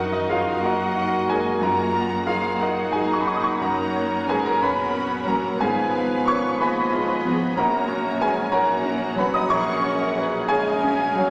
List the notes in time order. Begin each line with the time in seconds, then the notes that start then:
Already playing: F#2 D#3 F#3 D#4 F#4 A#4 D#5 F#5
0.12 D#3 D#4 D#5
0.29 F3 F#3 D#4 F4 G#4 F5
0.61 F#3 A#3 F#4 A#4 D#5 F#5
0.65 F#4 D#5 F#5
0.95 D#4
1.27 F#3 G#3 A#3 D#4 G#5
1.32 G#4
1.60 F#2 D#3 A#3 F4 F#4 A#4 F#5 A#5
1.64 A#4
1.93 A#4
2.26 F3 F#3 D#4 F4 G#4 F5
2.59 F#3 D#4 F#4 G#4 A#4 D#5 F#5
2.90 G#3 D#4 G#4 G#5
3.04 A#3 A#5
3.12 C#4 C#6
3.19 B3 B5
3.25 F#3 A#3 C#4 D#4 C#6
3.32 D#4 D#6
3.36 D#6
3.41 C#4 C#6
3.49 B3 B5
3.58 F#2 F#3 A#3 C#4 F#4 A#4 A#5
3.62 A#4 F#5 A#5
3.96 C#5
4.24 F#3 C#4 G#5
4.29 G#3 G#4 B4 G#5
4.43 A#3 A#4 A#5
4.60 A#1 F#3 B3 C#4 F#4 B4 C#5 F#5 B5
4.94 C#4
5.23 F#3 C#4 A#5
5.28 A#3 A#4 A#5
5.60 G#1 G#2 F3 G#3 B3 G#4 B4 F5 G#5
5.95 B4
6.25 F3 B3 C#4 C#6
6.29 A#4 C#5
6.58 A#3 B3 G#4 B4 D#5 G#5 B5
6.92 G#3 F4
7.23 F3 B3
7.55 A#1 F#3 A#3 C#4 F#4 A#4 C#5 F#5 A#5
7.89 C#5
8.21 F#3 G#3 C#4 G#4 B4 G#5
8.51 A#3 D#4 F#4 A#4 C#5 F#5 A#5
8.85 C#4
9.16 F#3 B3 C#4 B4 B5
9.33 D#4 D#5 D#6
9.49 A#1 G#3 C#4 G#4 A#4 C#5 F#5 A#5 C#6
9.83 F#4 A#4 C#5
10.15 F#3 C#4 F#4 G#4 B4
10.48 F#3 G#3 C#4 D#4 G#4 A#4 C#5 F5 G#5
10.81 C#4
11.12 F#3 C#4